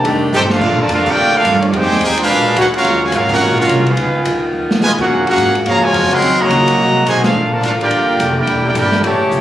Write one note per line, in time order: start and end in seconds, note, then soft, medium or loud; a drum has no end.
0.00 0.25 D#3 medium
0.00 0.25 G3 soft
0.00 0.60 G4 medium
0.00 0.20 A5 medium
0.04 0.32 F1 medium
0.04 0.61 D#3 medium
0.04 0.25 A3 soft
0.04 0.61 A3 medium
0.04 0.25 D4 medium
0.04 0.61 D4 medium
0.04 kick soft
0.04 ride medium
0.33 0.60 G1 loud
0.33 0.42 C4 loud
0.33 0.41 D#4 loud
0.33 0.42 D#4 loud
0.33 0.42 G4 loud
0.33 0.42 A4 loud
0.33 0.42 C5 loud
0.33 0.42 G5 loud
0.33 hi-hat pedal medium
0.50 0.77 A3 loud
0.50 0.77 D4 medium
0.50 0.77 F4 loud
0.50 0.77 A4 medium
0.50 0.77 A#4 medium
0.50 0.77 F5 loud
0.50 snare medium
0.61 0.77 A#1 loud
0.61 1.72 D3 medium
0.61 1.72 A3 medium
0.61 1.73 A#3 medium
0.61 2.14 F4 medium
0.61 kick medium
0.61 crash loud
0.79 0.90 D3 medium
0.79 0.90 F3 medium
0.79 0.89 A3 loud
0.79 0.90 F4 medium
0.79 0.90 A#4 medium
0.79 0.90 D5 medium
0.79 0.90 A5 loud
0.79 muted upright bass stroke soft
0.89 1.05 F2 loud
0.89 1.06 A3 medium
0.89 1.05 D4 medium
0.89 1.06 D4 loud
0.89 1.05 F4 loud
0.89 1.06 A4 loud
0.89 1.06 A#4 medium
0.89 1.06 F5 loud
0.89 kick soft
0.89 hi-hat pedal medium
0.89 ride medium
1.06 1.33 A3 loud
1.06 1.34 D4 medium
1.06 1.36 F4 loud
1.06 1.35 G4 loud
1.06 1.35 A#4 medium
1.06 1.36 D5 medium
1.06 1.35 G5 loud
1.06 muted upright bass stroke soft
1.06 kick loud
1.06 crash loud
1.17 1.44 D2 medium
1.34 1.58 A3 medium
1.34 1.58 D4 medium
1.34 1.59 D4 medium
1.34 1.58 F4 medium
1.34 1.59 A4 medium
1.34 1.59 A#4 medium
1.34 1.59 F5 loud
1.45 1.72 G2 loud
1.45 kick soft
1.45 hi-hat pedal medium
1.45 ride medium
1.60 1.73 F3 medium
1.60 1.73 A3 medium
1.60 1.73 D4 medium
1.60 1.63 C#5 medium
1.60 ride soft
1.64 1.74 A#3 medium
1.64 1.74 F4 medium
1.64 1.74 A4 medium
1.64 1.74 D5 medium
1.73 2.00 F2 medium
1.73 2.14 D#3 medium
1.73 2.14 G3 medium
1.73 2.84 G#3 medium
1.73 1.98 C4 medium
1.73 1.98 D#4 medium
1.73 2.00 D#4 loud
1.73 1.98 G4 loud
1.73 2.00 G#4 loud
1.73 2.00 C5 loud
1.73 2.00 G5 loud
1.73 kick soft
1.73 ride medium
1.82 snare soft
1.91 snare medium
2.00 2.27 D#2 medium
2.00 2.18 C4 medium
2.00 2.18 D#4 medium
2.00 2.20 D#4 medium
2.00 2.18 G4 medium
2.00 2.20 G#4 loud
2.00 2.20 C5 loud
2.00 2.04 F5 medium
2.00 kick soft
2.00 hi-hat pedal medium
2.00 ride medium
2.04 2.20 G5 loud
2.17 2.54 G#3 medium
2.17 2.54 D4 medium
2.17 2.54 F4 medium
2.17 ride medium
2.22 2.57 D4 loud
2.22 2.56 G#4 medium
2.22 2.57 B4 loud
2.22 2.56 F5 loud
2.28 2.56 A#1 medium
2.28 2.85 B2 medium
2.28 2.85 A#3 medium
2.28 2.86 D4 medium
2.28 kick soft
2.56 2.84 D2 loud
2.56 2.66 D#4 medium
2.56 2.65 F#4 medium
2.56 2.66 G#4 medium
2.56 2.66 B4 medium
2.56 2.66 F#5 loud
2.56 kick soft
2.56 hi-hat pedal medium
2.56 ride medium
2.74 3.00 A#3 medium
2.74 3.00 C#4 medium
2.74 3.01 C#4 medium
2.74 3.00 F4 medium
2.74 3.01 F#4 medium
2.74 3.01 A#4 medium
2.74 3.01 F5 loud
2.74 ride medium
2.84 3.12 D#2 medium
2.84 3.97 C#3 medium
2.84 3.97 F#3 medium
2.84 3.96 G#3 medium
2.84 5.08 F4 medium
2.84 kick soft
2.84 ride medium
3.02 3.12 A#2 medium
3.02 3.12 C#3 medium
3.02 3.12 G#3 medium
3.02 3.13 F#4 medium
3.02 3.13 C#5 medium
3.02 3.13 F5 medium
3.02 3.13 G#5 loud
3.12 3.40 G#1 loud
3.12 3.30 A#3 medium
3.12 3.30 C#4 medium
3.12 3.31 C#4 medium
3.12 3.31 F4 medium
3.12 3.31 F#4 medium
3.12 3.31 A#4 medium
3.12 3.31 F5 loud
3.12 kick soft
3.12 hi-hat pedal medium
3.12 ride medium
3.29 3.57 A#3 medium
3.29 3.57 C#4 medium
3.29 3.58 F4 medium
3.29 3.57 F#4 medium
3.29 3.58 A#4 medium
3.29 kick loud
3.29 crash medium
3.33 3.58 F#5 loud
3.40 3.57 A#1 medium
3.58 3.85 A#3 medium
3.58 3.85 C#4 medium
3.58 3.85 F4 medium
3.58 3.85 F#4 medium
3.58 3.85 A#4 medium
3.58 3.85 F5 medium
3.58 muted upright bass stroke soft
3.69 3.96 C2 loud
3.69 kick soft
3.69 hi-hat pedal medium
3.69 ride medium
3.86 4.39 G#3 medium
3.86 4.39 B3 medium
3.86 4.40 D#4 medium
3.86 4.39 F4 medium
3.86 4.40 G#4 medium
3.86 4.40 B4 medium
3.86 4.40 F5 medium
3.86 ride medium
3.97 4.24 C#2 medium
3.97 5.08 D#3 medium
3.97 5.09 B3 medium
3.97 kick soft
3.97 ride medium
4.25 4.53 D2 loud
4.25 kick soft
4.25 hi-hat pedal medium
4.25 ride medium
4.53 4.80 D#2 medium
4.71 snare medium
4.81 5.08 F2 loud
4.81 4.90 B2 medium
4.81 4.90 F3 medium
4.81 4.90 G#3 medium
4.81 4.91 F4 loud
4.81 4.91 B4 medium
4.81 4.91 D#5 medium
4.81 4.91 G#5 loud
4.81 snare medium
4.81 hi-hat pedal medium
4.98 5.25 A#3 medium
4.98 5.25 C#4 medium
4.98 5.26 F#4 medium
4.98 5.26 G#4 medium
4.98 5.25 A#4 medium
4.98 5.26 F#5 loud
4.98 kick loud
4.98 crash medium
5.09 5.37 F#2 medium
5.09 6.22 G#3 medium
5.09 6.22 F4 medium
5.09 7.33 F#4 medium
5.27 5.53 A#3 medium
5.27 5.53 C#4 medium
5.27 5.54 C#4 medium
5.27 5.53 F#4 medium
5.27 5.54 G#4 medium
5.27 5.54 A#4 medium
5.27 5.54 F#5 loud
5.27 ride medium
5.37 5.65 G#2 loud
5.37 kick soft
5.37 hi-hat pedal medium
5.37 ride medium
5.55 ride medium
5.65 5.93 F2 medium
5.65 5.81 C#3 medium
5.65 5.81 F3 medium
5.65 5.82 A#3 loud
5.65 5.82 G#4 medium
5.65 5.82 C#5 loud
5.65 5.83 F5 loud
5.65 5.83 A#5 loud
5.65 kick soft
5.65 ride medium
5.82 6.11 C#3 medium
5.82 6.11 F3 medium
5.82 6.11 G#3 loud
5.82 6.11 F4 loud
5.82 6.11 A#4 medium
5.82 6.11 C#5 loud
5.82 6.11 G#5 loud
5.93 6.02 F#2 loud
5.93 kick soft
5.93 hi-hat pedal medium
5.93 ride medium
6.02 6.11 F2 medium
6.11 6.21 C#2 medium
6.11 6.39 C#3 loud
6.11 6.38 F#3 loud
6.11 6.40 C4 loud
6.11 6.40 A#4 medium
6.11 6.40 D#5 loud
6.11 6.40 F#5 loud
6.11 6.40 C6 loud
6.11 ride medium
6.21 6.49 D#2 medium
6.21 6.77 D#3 medium
6.21 6.78 C#4 medium
6.21 kick soft
6.21 ride medium
6.39 6.78 C#3 loud
6.39 7.06 F#3 loud
6.39 7.07 A#3 loud
6.39 7.05 F#4 loud
6.39 6.79 C#5 medium
6.39 7.06 D#5 medium
6.39 7.07 A#5 loud
6.49 6.77 C#2 loud
6.49 kick soft
6.49 hi-hat pedal medium
6.49 ride medium
6.68 ride loud
6.78 7.06 C2 medium
6.78 7.34 C3 medium
6.78 7.34 G#3 medium
6.78 kick soft
7.06 7.34 B1 loud
7.06 7.23 C3 medium
7.06 7.23 D#3 loud
7.06 7.23 G#3 loud
7.06 7.23 F#4 loud
7.06 7.23 C5 loud
7.06 7.23 D#5 medium
7.06 7.23 G#5 loud
7.06 kick soft
7.06 hi-hat pedal medium
7.06 ride medium
7.24 7.50 A3 medium
7.24 7.50 D4 medium
7.24 7.50 F4 medium
7.24 7.50 A4 medium
7.24 7.50 A#4 medium
7.24 7.50 F5 loud
7.24 snare loud
7.24 ride medium
7.34 7.62 A#1 medium
7.34 9.02 D3 medium
7.34 8.30 A#3 medium
7.34 8.30 F4 medium
7.52 7.63 D3 medium
7.52 7.63 F3 medium
7.52 7.63 A3 medium
7.52 7.63 F4 medium
7.52 7.63 A#4 medium
7.52 7.63 D5 medium
7.52 7.63 A5 medium
7.63 7.90 A1 loud
7.63 7.72 A3 medium
7.63 7.71 D4 medium
7.63 7.72 D4 medium
7.63 7.72 F4 medium
7.63 7.72 A4 medium
7.63 7.72 A#4 medium
7.63 7.71 F5 loud
7.63 kick soft
7.63 hi-hat pedal medium
7.63 ride medium
7.81 8.33 A#3 medium
7.81 8.33 D4 medium
7.81 8.33 F4 medium
7.81 8.33 G4 medium
7.81 8.33 A#4 medium
7.81 8.33 D5 medium
7.81 8.33 G5 loud
7.81 ride medium
7.91 8.18 G1 medium
7.91 kick soft
7.91 ride medium
8.19 8.46 F1 loud
8.19 kick soft
8.19 hi-hat pedal medium
8.19 ride medium
8.37 8.63 A#3 medium
8.37 8.63 D4 medium
8.37 8.63 E4 medium
8.37 8.63 G4 medium
8.37 8.63 A#4 medium
8.37 8.63 D5 medium
8.37 8.64 G5 loud
8.47 8.74 E1 medium
8.47 9.03 G3 medium
8.47 9.03 E4 medium
8.47 kick soft
8.47 ride medium
8.64 8.69 A#3 medium
8.64 8.69 D4 medium
8.64 8.71 E4 medium
8.64 8.69 G4 medium
8.64 8.71 A#4 medium
8.64 8.71 D5 medium
8.64 8.71 G5 medium
8.75 9.02 G1 loud
8.75 9.01 A#3 medium
8.75 9.01 D4 medium
8.75 9.02 E4 medium
8.75 9.01 G4 medium
8.75 9.02 A#4 medium
8.75 9.02 D5 medium
8.75 9.02 G5 loud
8.75 kick soft
8.75 hi-hat pedal medium
8.75 ride medium
8.92 snare medium
9.03 9.20 A1 medium
9.03 9.41 C#3 medium
9.03 9.41 E3 medium
9.03 9.41 A3 medium
9.03 9.41 G4 medium
9.03 9.41 C#5 medium
9.03 9.41 E5 medium
9.03 9.41 A5 medium
9.03 kick soft
9.03 ride medium
9.20 muted upright bass stroke soft
9.31 9.41 C#2 loud
9.31 hi-hat pedal medium